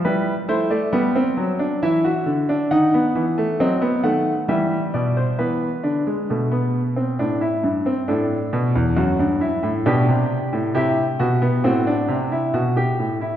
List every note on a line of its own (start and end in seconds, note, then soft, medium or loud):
0.05 0.32 G3 medium
0.05 0.32 E4 medium
0.05 0.32 B4 medium
0.48 0.69 A3 medium
0.48 0.70 E4 medium
0.48 0.70 C5 medium
0.70 0.92 A3 medium
0.70 1.78 D5 medium
0.93 1.20 G3 medium
0.93 1.14 B3 medium
1.16 1.43 C4 medium
1.37 1.65 F#3 medium
1.59 1.81 D4 medium
1.83 2.10 E3 medium
1.83 2.04 E4 medium
1.83 2.68 E5 medium
2.05 2.32 F#4 medium
2.26 2.53 D3 medium
2.49 2.70 D4 medium
2.71 2.99 D#3 medium
2.71 2.93 D#4 medium
2.71 3.58 F#5 medium
2.94 3.21 B3 medium
3.15 3.43 E3 medium
3.38 3.59 A3 medium
3.60 3.88 F#3 medium
3.60 3.82 C4 medium
3.60 3.88 D#5 medium
3.82 4.04 B3 medium
4.03 4.32 D#3 medium
4.03 4.32 A3 medium
4.03 4.32 F#5 medium
4.48 4.77 E3 medium
4.48 5.36 G3 medium
4.48 4.77 E5 medium
4.94 5.22 B2 medium
4.94 5.16 D5 medium
5.17 5.39 C5 medium
5.39 5.67 E3 medium
5.39 5.67 B3 medium
5.39 8.03 B4 medium
5.83 6.12 D3 medium
5.83 6.06 D4 medium
6.07 6.29 G#3 medium
6.30 7.16 B2 medium
6.30 6.51 A3 medium
6.52 6.79 B3 medium
6.96 7.18 C4 medium
7.19 7.47 A2 medium
7.19 7.41 D4 medium
7.41 7.69 E4 medium
7.64 7.91 G2 medium
7.86 8.07 C4 medium
8.08 8.36 A2 medium
8.08 8.94 D4 medium
8.08 9.82 A4 medium
8.53 8.74 B2 medium
8.75 8.97 E2 medium
8.96 9.18 F#2 medium
8.96 9.24 F#4 medium
9.19 9.47 G2 medium
9.41 9.69 E4 medium
9.63 9.85 A2 medium
9.86 10.08 B2 medium
9.86 10.72 D4 medium
9.86 10.72 G4 medium
10.09 10.36 C3 medium
10.53 10.74 A2 medium
10.74 11.02 C3 medium
10.74 11.02 E4 medium
10.74 11.61 G4 medium
11.19 11.47 B2 medium
11.19 11.41 F#4 medium
11.42 11.63 B3 medium
11.64 11.92 A2 medium
11.64 11.86 C4 medium
11.64 12.52 F#4 medium
11.87 12.14 D4 medium
12.08 12.36 C3 medium
12.32 12.53 E4 medium
12.54 12.81 B2 medium
12.54 12.75 F#4 medium
12.77 13.04 G4 medium
12.99 13.27 A2 medium
13.21 13.37 E4 medium